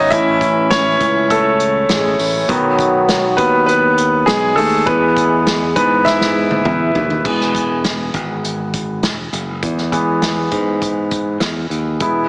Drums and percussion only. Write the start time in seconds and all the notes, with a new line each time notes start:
0.11 kick, closed hi-hat
0.41 kick, closed hi-hat
0.71 snare, closed hi-hat
1.00 kick, closed hi-hat
1.30 kick, closed hi-hat
1.60 closed hi-hat
1.89 snare, closed hi-hat
2.19 open hi-hat
2.49 kick, closed hi-hat
2.79 kick, closed hi-hat
3.08 snare, closed hi-hat
3.38 kick, closed hi-hat
3.68 closed hi-hat
3.98 closed hi-hat
4.27 snare, closed hi-hat
4.57 open hi-hat
4.87 kick, closed hi-hat
5.17 kick, closed hi-hat
5.47 snare, closed hi-hat
5.76 kick, closed hi-hat
6.06 kick, snare
6.21 snare
6.51 high tom
6.65 mid tom
6.95 floor tom
7.10 floor tom
7.25 kick, crash
7.40 snare
7.55 kick, closed hi-hat
7.84 snare, closed hi-hat
8.14 kick, closed hi-hat
8.44 closed hi-hat
8.73 kick, closed hi-hat
9.03 snare, closed hi-hat
9.33 closed hi-hat
9.63 kick, closed hi-hat
9.77 snare
9.92 kick, closed hi-hat
10.22 snare, closed hi-hat
10.51 kick, closed hi-hat
10.82 kick, closed hi-hat
11.11 kick, closed hi-hat
11.40 snare, closed hi-hat
11.71 closed hi-hat
12.00 kick, closed hi-hat